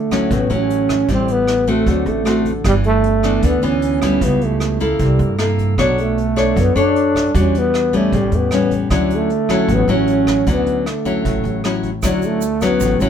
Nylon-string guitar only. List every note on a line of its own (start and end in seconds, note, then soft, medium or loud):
0.00 0.29 D3 soft
0.11 0.47 F#3 medium
0.11 0.47 C#4 medium
0.11 0.47 E4 medium
0.31 1.07 A2 medium
0.50 1.06 F#3 medium
0.50 1.06 C#4 medium
0.50 1.06 E4 medium
1.09 1.85 A2 soft
1.09 1.65 G3 soft
1.09 1.65 E4 medium
1.68 2.23 A3 medium
1.68 2.23 C4 medium
1.68 2.23 F#4 medium
1.88 2.63 D3 medium
2.25 2.51 A3 medium
2.25 2.51 C4 soft
2.25 2.51 F#4 medium
2.65 3.41 G2 soft
2.65 3.04 E3 medium
2.65 3.04 B3 soft
2.65 3.04 D4 soft
3.24 3.60 E3 medium
3.24 3.60 B3 medium
3.24 3.60 D4 medium
3.44 4.20 D3 medium
3.63 3.99 E3 medium
3.63 3.99 B3 medium
4.03 4.77 G3 medium
4.03 4.77 B3 medium
4.03 4.77 E4 medium
4.22 4.98 C#3 medium
4.80 5.36 A#3 medium
4.80 5.36 E4 medium
4.80 5.36 A4 medium
5.00 5.76 C3 medium
5.38 5.75 A#3 medium
5.38 5.75 E4 medium
5.38 5.75 A4 medium
5.78 6.54 B3 medium
5.78 6.17 D4 soft
5.78 6.17 A4 soft
5.78 6.17 C#5 medium
6.36 6.72 D4 medium
6.36 6.73 A4 medium
6.36 6.73 C#5 medium
6.56 7.32 F#3 soft
6.76 7.31 D4 medium
6.76 7.31 A4 medium
6.76 7.32 C#5 medium
7.34 8.11 E3 medium
7.34 7.90 G3 soft
7.34 7.90 D4 soft
7.34 7.90 F#4 medium
7.93 8.48 G3 medium
7.93 8.49 B3 medium
7.93 8.49 C#4 medium
8.13 8.89 A2 medium
8.52 8.88 G3 soft
8.52 8.88 B3 medium
8.52 8.88 C#4 medium
8.91 9.67 D3 medium
8.91 9.29 F#3 medium
8.91 9.30 C#4 soft
8.91 9.30 E4 medium
9.49 9.85 F#3 medium
9.49 9.85 C#4 medium
9.49 9.86 E4 medium
9.69 10.45 A2 soft
9.89 10.44 F#3 medium
9.89 10.44 C#4 medium
9.89 10.44 E4 medium
10.47 11.23 D3 soft
10.47 10.86 F#3 medium
10.47 10.86 C#4 medium
10.47 10.86 E4 medium
11.05 11.61 F#3 medium
11.05 11.61 C#4 medium
11.05 11.61 E4 medium
11.25 12.01 A2 soft
11.65 11.89 F#3 soft
11.65 11.89 C#4 medium
11.65 11.90 E4 medium
12.04 12.79 D3 soft
12.04 12.42 F#3 soft
12.04 12.42 C#4 soft
12.04 12.42 E4 soft
12.62 12.98 F#3 medium
12.62 12.98 C#4 medium
12.62 12.98 E4 medium
12.82 13.09 A2 medium
13.01 13.09 F#3 medium
13.01 13.09 C#4 medium
13.01 13.09 E4 medium